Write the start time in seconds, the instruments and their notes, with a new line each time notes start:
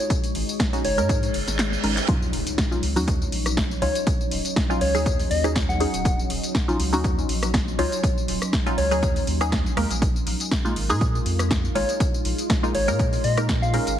Already playing: ambient pad G#3 D#4 C#5
0.10 ambient pad G#4, kick, closed hi-hat, tambourine
0.24 closed hi-hat, tambourine
0.35 sub bass G#1, open hi-hat
0.49 tambourine
0.60 kick, snare, closed hi-hat, tambourine
0.73 synth stab G#3 C#4 D#4 F#4, closed hi-hat, tambourine
0.84 sub bass F#1, soft synth lead C#5, open hi-hat
0.98 sub bass G#2, synth stab G#3 C#4 D#4 A#4, closed hi-hat, tambourine
1.09 kick, closed hi-hat, tambourine, reverse cymbal
1.23 closed hi-hat, tambourine
1.34 sub bass F#1, open hi-hat
1.47 sub bass G#1, snare, closed hi-hat, tambourine
1.59 snare, clap, closed hi-hat, tambourine
1.73 tambourine
1.83 sub bass G#1, synth stab G#3 C#4 D#4 A#4, open hi-hat
1.97 clap, closed hi-hat, tambourine
2.08 synth stab F#3 C#4 D#4 F4, ambient pad F#3 C#4 D#4 C#5, kick, closed hi-hat, tambourine, impact
2.22 tambourine
2.33 sub bass D#1, open hi-hat
2.47 closed hi-hat, tambourine
2.58 kick, snare, closed hi-hat, tambourine
2.71 synth stab F#3 C#4 D#4 F4, tambourine
2.83 sub bass C#2, open hi-hat
2.96 sub bass D#2, synth stab F#3 C#4 D#4 F#4, open hi-hat, tambourine
3.08 kick, closed hi-hat, tambourine
3.22 tambourine
3.32 sub bass A#1, open hi-hat
3.46 cross-stick, closed hi-hat, tambourine
3.57 kick, snare, closed hi-hat, tambourine
3.71 tambourine
3.82 sub bass C#2, synth stab F#3 C#4 D#4 F4, soft synth lead C#5, open hi-hat
3.95 closed hi-hat, tambourine
4.07 kick, closed hi-hat, tambourine
4.21 tambourine
4.31 sub bass D#1, open hi-hat
4.45 closed hi-hat, tambourine
4.56 kick, snare, closed hi-hat, tambourine
4.70 synth stab F#3 C#4 D#4 F4, tambourine
4.81 sub bass C#2, soft synth lead C#5, open hi-hat
4.94 sub bass D#2, synth stab F#3 C#4 D#4 G#4, open hi-hat, tambourine
5.06 kick, closed hi-hat, tambourine
5.19 open hi-hat, tambourine
5.31 sub bass D#2, soft synth lead D#5, open hi-hat
5.44 synth stab F#3 C#4 D#4 G#4, cross-stick, closed hi-hat, tambourine
5.56 kick, snare, closed hi-hat, tambourine
5.69 soft synth lead F#5, tambourine
5.80 synth stab F#3 C#4 D#4 G#4, open hi-hat
5.94 sub bass D#1, closed hi-hat, tambourine
6.05 ambient pad C6, kick, closed hi-hat, tambourine
6.19 tambourine
6.30 sub bass D#1, open hi-hat
6.43 closed hi-hat, tambourine
6.55 kick, snare, closed hi-hat, tambourine
6.68 synth stab F#3 C#4 D#4 F4, tambourine
6.79 sub bass C#2, open hi-hat
6.93 sub bass D#2, synth stab F#3 C#4 D#4 F#4, open hi-hat, tambourine
7.04 kick, closed hi-hat, tambourine
7.19 tambourine
7.29 sub bass A#1, open hi-hat
7.43 cross-stick, closed hi-hat, tambourine
7.54 kick, snare, closed hi-hat, tambourine
7.68 tambourine
7.79 sub bass C#2, synth stab F#3 C#4 D#4 F4, soft synth lead C#5, open hi-hat
7.92 closed hi-hat, tambourine
8.03 kick, closed hi-hat, tambourine
8.18 tambourine
8.28 sub bass D#1, open hi-hat
8.42 cross-stick, closed hi-hat, tambourine
8.53 kick, snare, closed hi-hat, tambourine
8.66 synth stab F#3 C#4 D#4 F4, closed hi-hat, tambourine
8.78 sub bass C#2, soft synth lead C#5, open hi-hat
8.91 sub bass D#2, synth stab F#3 C#4 D#4 G#4, open hi-hat, tambourine
9.03 kick, closed hi-hat, tambourine
9.16 open hi-hat, tambourine
9.27 sub bass D#2, open hi-hat
9.41 synth stab F#3 C#4 D#4 G#4, cross-stick, closed hi-hat, tambourine
9.52 kick, snare, closed hi-hat, tambourine
9.66 sub bass A#1, tambourine
9.77 sub bass D#2, synth stab G#3 A#3 D#4 A#4, cross-stick, open hi-hat
9.90 sub bass A#1, closed hi-hat, tambourine
10.02 ambient pad G#3 D#4 F4 A#4, kick, closed hi-hat, tambourine
10.16 tambourine
10.27 sub bass A#1, open hi-hat
10.40 closed hi-hat, tambourine
10.51 kick, snare, closed hi-hat, tambourine
10.65 synth stab G#3 A#3 D#4 F4, tambourine
10.76 sub bass G#1, open hi-hat
10.89 sub bass A#2, synth stab G#3 A#3 D#4 G#4, open hi-hat, tambourine
11.01 kick, closed hi-hat, tambourine
11.15 tambourine
11.26 sub bass F2, open hi-hat
11.39 cross-stick, closed hi-hat, tambourine
11.51 kick, snare, closed hi-hat, tambourine
11.65 tambourine
11.75 sub bass G#1, synth stab G#3 A#3 D#4 F4, soft synth lead C#5, open hi-hat
11.89 closed hi-hat, tambourine
12.00 ambient pad C6, kick, closed hi-hat, tambourine
12.14 tambourine
12.25 sub bass A#1, open hi-hat
12.38 closed hi-hat, tambourine
12.50 kick, snare, closed hi-hat, tambourine
12.63 synth stab G#3 A#3 D#4 F4, tambourine
12.75 sub bass G#1, soft synth lead C#5, open hi-hat
12.88 sub bass A#2, synth stab G#3 A#3 D#4 A#4, open hi-hat, tambourine
12.99 kick, closed hi-hat, tambourine
13.13 open hi-hat, tambourine
13.24 sub bass A#2, soft synth lead D#5, open hi-hat
13.37 synth stab G#3 A#3 D#4 A#4, cross-stick, closed hi-hat, tambourine
13.49 kick, snare, closed hi-hat, tambourine
13.62 soft synth lead F5, tambourine
13.73 synth stab G#3 C#4 D#4 A#4, open hi-hat
13.87 sub bass G#1, closed hi-hat, tambourine